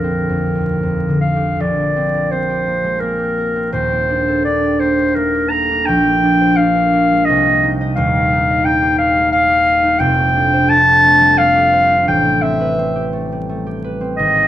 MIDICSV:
0, 0, Header, 1, 3, 480
1, 0, Start_track
1, 0, Tempo, 785340
1, 982, Time_signature, 3, 2, 24, 8
1, 982, Tempo, 711744
1, 3862, Tempo, 696056
1, 5782, Tempo, 680272
1, 7702, Tempo, 699301
1, 9826, End_track
2, 0, Start_track
2, 0, Title_t, "Clarinet"
2, 0, Program_c, 0, 71
2, 0, Note_on_c, 0, 70, 68
2, 737, Note_off_c, 0, 70, 0
2, 740, Note_on_c, 0, 77, 65
2, 982, Note_on_c, 0, 74, 76
2, 992, Note_off_c, 0, 77, 0
2, 1458, Note_on_c, 0, 72, 81
2, 1468, Note_off_c, 0, 74, 0
2, 1924, Note_on_c, 0, 70, 83
2, 1934, Note_off_c, 0, 72, 0
2, 2407, Note_off_c, 0, 70, 0
2, 2411, Note_on_c, 0, 72, 76
2, 2889, Note_off_c, 0, 72, 0
2, 2896, Note_on_c, 0, 74, 86
2, 3134, Note_on_c, 0, 72, 78
2, 3144, Note_off_c, 0, 74, 0
2, 3374, Note_on_c, 0, 70, 81
2, 3384, Note_off_c, 0, 72, 0
2, 3608, Note_on_c, 0, 82, 88
2, 3618, Note_off_c, 0, 70, 0
2, 3849, Note_on_c, 0, 79, 92
2, 3859, Note_off_c, 0, 82, 0
2, 4337, Note_on_c, 0, 77, 103
2, 4347, Note_off_c, 0, 79, 0
2, 4809, Note_on_c, 0, 75, 97
2, 4819, Note_off_c, 0, 77, 0
2, 5130, Note_off_c, 0, 75, 0
2, 5296, Note_on_c, 0, 77, 92
2, 5773, Note_on_c, 0, 79, 107
2, 5783, Note_off_c, 0, 77, 0
2, 6005, Note_off_c, 0, 79, 0
2, 6009, Note_on_c, 0, 77, 96
2, 6244, Note_off_c, 0, 77, 0
2, 6248, Note_on_c, 0, 77, 106
2, 6721, Note_on_c, 0, 79, 100
2, 6732, Note_off_c, 0, 77, 0
2, 7217, Note_on_c, 0, 81, 126
2, 7228, Note_off_c, 0, 79, 0
2, 7699, Note_on_c, 0, 77, 105
2, 7709, Note_off_c, 0, 81, 0
2, 8176, Note_off_c, 0, 77, 0
2, 8181, Note_on_c, 0, 79, 93
2, 8413, Note_on_c, 0, 76, 90
2, 8423, Note_off_c, 0, 79, 0
2, 8900, Note_off_c, 0, 76, 0
2, 9614, Note_on_c, 0, 75, 90
2, 9826, Note_off_c, 0, 75, 0
2, 9826, End_track
3, 0, Start_track
3, 0, Title_t, "Harp"
3, 0, Program_c, 1, 46
3, 0, Note_on_c, 1, 34, 51
3, 0, Note_on_c, 1, 41, 42
3, 0, Note_on_c, 1, 50, 46
3, 0, Note_on_c, 1, 58, 53
3, 22, Note_on_c, 1, 60, 48
3, 172, Note_off_c, 1, 41, 0
3, 180, Note_on_c, 1, 41, 36
3, 337, Note_on_c, 1, 39, 40
3, 499, Note_off_c, 1, 41, 0
3, 507, Note_on_c, 1, 41, 46
3, 613, Note_off_c, 1, 39, 0
3, 656, Note_off_c, 1, 50, 0
3, 663, Note_on_c, 1, 50, 39
3, 833, Note_on_c, 1, 67, 42
3, 972, Note_off_c, 1, 34, 0
3, 978, Note_off_c, 1, 58, 0
3, 980, Note_on_c, 1, 34, 58
3, 1001, Note_off_c, 1, 50, 0
3, 1004, Note_off_c, 1, 41, 0
3, 1105, Note_on_c, 1, 58, 46
3, 1214, Note_off_c, 1, 60, 0
3, 1222, Note_on_c, 1, 60, 49
3, 1347, Note_on_c, 1, 70, 50
3, 1456, Note_off_c, 1, 60, 0
3, 1464, Note_on_c, 1, 60, 52
3, 1574, Note_off_c, 1, 67, 0
3, 1582, Note_on_c, 1, 67, 50
3, 1688, Note_off_c, 1, 58, 0
3, 1696, Note_on_c, 1, 58, 48
3, 1812, Note_on_c, 1, 56, 43
3, 1926, Note_off_c, 1, 58, 0
3, 1934, Note_on_c, 1, 58, 53
3, 2012, Note_off_c, 1, 56, 0
3, 2040, Note_off_c, 1, 67, 0
3, 2049, Note_on_c, 1, 67, 47
3, 2169, Note_off_c, 1, 70, 0
3, 2177, Note_on_c, 1, 70, 52
3, 2290, Note_off_c, 1, 60, 0
3, 2298, Note_on_c, 1, 60, 49
3, 2410, Note_on_c, 1, 27, 61
3, 2417, Note_on_c, 1, 39, 54
3, 2429, Note_off_c, 1, 34, 0
3, 2434, Note_off_c, 1, 60, 0
3, 2525, Note_off_c, 1, 58, 0
3, 2533, Note_on_c, 1, 58, 48
3, 2659, Note_on_c, 1, 62, 47
3, 2786, Note_on_c, 1, 69, 55
3, 2894, Note_off_c, 1, 62, 0
3, 2902, Note_on_c, 1, 62, 53
3, 3016, Note_off_c, 1, 67, 0
3, 3024, Note_on_c, 1, 67, 50
3, 3139, Note_off_c, 1, 58, 0
3, 3147, Note_on_c, 1, 58, 54
3, 3269, Note_on_c, 1, 57, 46
3, 3374, Note_off_c, 1, 58, 0
3, 3382, Note_on_c, 1, 58, 57
3, 3469, Note_off_c, 1, 57, 0
3, 3496, Note_off_c, 1, 67, 0
3, 3504, Note_on_c, 1, 67, 51
3, 3617, Note_off_c, 1, 69, 0
3, 3625, Note_on_c, 1, 69, 53
3, 3743, Note_off_c, 1, 62, 0
3, 3751, Note_on_c, 1, 62, 56
3, 3867, Note_on_c, 1, 34, 66
3, 3882, Note_off_c, 1, 27, 0
3, 3884, Note_off_c, 1, 69, 0
3, 3886, Note_off_c, 1, 39, 0
3, 3975, Note_off_c, 1, 58, 0
3, 3983, Note_on_c, 1, 58, 54
3, 4097, Note_off_c, 1, 62, 0
3, 4105, Note_on_c, 1, 62, 57
3, 4227, Note_on_c, 1, 72, 62
3, 4338, Note_off_c, 1, 62, 0
3, 4346, Note_on_c, 1, 62, 56
3, 4456, Note_off_c, 1, 70, 0
3, 4464, Note_on_c, 1, 70, 53
3, 4580, Note_off_c, 1, 58, 0
3, 4588, Note_on_c, 1, 58, 60
3, 4715, Note_on_c, 1, 56, 49
3, 4836, Note_on_c, 1, 36, 72
3, 4845, Note_off_c, 1, 62, 0
3, 4848, Note_off_c, 1, 34, 0
3, 4915, Note_off_c, 1, 56, 0
3, 4946, Note_off_c, 1, 58, 0
3, 4955, Note_on_c, 1, 58, 52
3, 5076, Note_on_c, 1, 63, 56
3, 5194, Note_on_c, 1, 75, 65
3, 5302, Note_on_c, 1, 27, 69
3, 5308, Note_on_c, 1, 39, 74
3, 5325, Note_off_c, 1, 72, 0
3, 5330, Note_off_c, 1, 36, 0
3, 5422, Note_off_c, 1, 58, 0
3, 5430, Note_on_c, 1, 58, 56
3, 5545, Note_off_c, 1, 63, 0
3, 5554, Note_on_c, 1, 63, 60
3, 5665, Note_off_c, 1, 75, 0
3, 5674, Note_on_c, 1, 75, 62
3, 5774, Note_off_c, 1, 63, 0
3, 5782, Note_on_c, 1, 63, 61
3, 5887, Note_off_c, 1, 67, 0
3, 5895, Note_on_c, 1, 67, 56
3, 6008, Note_off_c, 1, 58, 0
3, 6016, Note_on_c, 1, 58, 57
3, 6136, Note_on_c, 1, 56, 53
3, 6244, Note_off_c, 1, 58, 0
3, 6253, Note_on_c, 1, 58, 64
3, 6342, Note_off_c, 1, 56, 0
3, 6361, Note_off_c, 1, 67, 0
3, 6370, Note_on_c, 1, 67, 54
3, 6481, Note_off_c, 1, 75, 0
3, 6490, Note_on_c, 1, 75, 63
3, 6603, Note_off_c, 1, 63, 0
3, 6611, Note_on_c, 1, 63, 62
3, 6724, Note_on_c, 1, 29, 74
3, 6728, Note_on_c, 1, 41, 72
3, 6750, Note_off_c, 1, 75, 0
3, 6751, Note_off_c, 1, 58, 0
3, 6752, Note_off_c, 1, 63, 0
3, 6754, Note_off_c, 1, 27, 0
3, 6754, Note_off_c, 1, 70, 0
3, 6757, Note_off_c, 1, 39, 0
3, 6858, Note_on_c, 1, 57, 60
3, 6975, Note_on_c, 1, 62, 59
3, 7103, Note_on_c, 1, 72, 64
3, 7208, Note_off_c, 1, 62, 0
3, 7217, Note_on_c, 1, 62, 61
3, 7331, Note_off_c, 1, 67, 0
3, 7339, Note_on_c, 1, 67, 52
3, 7452, Note_off_c, 1, 57, 0
3, 7460, Note_on_c, 1, 57, 61
3, 7578, Note_on_c, 1, 55, 50
3, 7691, Note_off_c, 1, 57, 0
3, 7700, Note_on_c, 1, 57, 57
3, 7784, Note_off_c, 1, 55, 0
3, 7812, Note_off_c, 1, 67, 0
3, 7821, Note_on_c, 1, 67, 57
3, 7930, Note_off_c, 1, 72, 0
3, 7938, Note_on_c, 1, 72, 62
3, 8044, Note_off_c, 1, 62, 0
3, 8052, Note_on_c, 1, 62, 61
3, 8178, Note_on_c, 1, 33, 65
3, 8193, Note_off_c, 1, 29, 0
3, 8195, Note_off_c, 1, 41, 0
3, 8196, Note_off_c, 1, 62, 0
3, 8289, Note_off_c, 1, 57, 0
3, 8297, Note_on_c, 1, 57, 60
3, 8419, Note_on_c, 1, 60, 59
3, 8536, Note_on_c, 1, 71, 59
3, 8656, Note_off_c, 1, 60, 0
3, 8664, Note_on_c, 1, 60, 57
3, 8774, Note_off_c, 1, 67, 0
3, 8782, Note_on_c, 1, 67, 54
3, 8891, Note_off_c, 1, 57, 0
3, 8899, Note_on_c, 1, 57, 54
3, 9033, Note_on_c, 1, 55, 50
3, 9143, Note_off_c, 1, 57, 0
3, 9151, Note_on_c, 1, 57, 59
3, 9232, Note_off_c, 1, 55, 0
3, 9261, Note_off_c, 1, 67, 0
3, 9269, Note_on_c, 1, 67, 53
3, 9383, Note_off_c, 1, 71, 0
3, 9391, Note_on_c, 1, 71, 51
3, 9495, Note_off_c, 1, 60, 0
3, 9503, Note_on_c, 1, 60, 58
3, 9631, Note_on_c, 1, 32, 65
3, 9639, Note_off_c, 1, 33, 0
3, 9643, Note_off_c, 1, 57, 0
3, 9643, Note_off_c, 1, 67, 0
3, 9645, Note_off_c, 1, 71, 0
3, 9745, Note_on_c, 1, 58, 51
3, 9826, Note_off_c, 1, 32, 0
3, 9826, Note_off_c, 1, 58, 0
3, 9826, Note_off_c, 1, 60, 0
3, 9826, Note_off_c, 1, 72, 0
3, 9826, End_track
0, 0, End_of_file